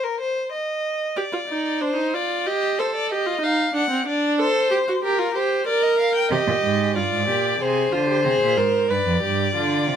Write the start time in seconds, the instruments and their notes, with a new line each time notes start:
0.04 violin A#4
0.20 violin C5
0.52 violin D#5
1.16 viola G4, violin D5
1.32 viola F4
1.48 viola D#4
1.81 viola D4, violin C5
1.96 viola D#4
2.14 viola F4, violin D5
2.46 viola G4, violin D#5
2.78 viola A4, violin C5
2.95 violin D5
3.11 viola G4, violin D#5
3.26 viola F4
3.41 viola D#4, violin F5
3.74 viola D4, violin F#5
3.90 viola C4
4.07 viola D4, violin D5
4.39 viola A4, violin C5
4.71 viola G4
4.88 viola F#4
5.03 viola G4, violin A#4
5.19 viola F4
5.34 viola G4, violin C5
5.67 viola A#4, violin D5
5.83 violin D#5
5.99 violin F5
6.15 violin G5
6.31 cello C3, viola G4, violin D#5
6.48 cello A#2
6.63 cello G#2
6.96 cello G2, viola F4, violin D5
7.12 cello G#2
7.28 cello A#2, viola G4
7.60 cello C3, viola G#4, violin C5
7.92 cello D3, viola F4
8.08 viola G4
8.25 cello C3, viola G#4
8.42 cello A#2
8.57 cello G#2, viola A#4
8.90 cello G2, viola B4, violin D5
9.07 cello F2
9.23 cello G2, viola G4
9.55 cello D3, viola F4
9.88 cello C3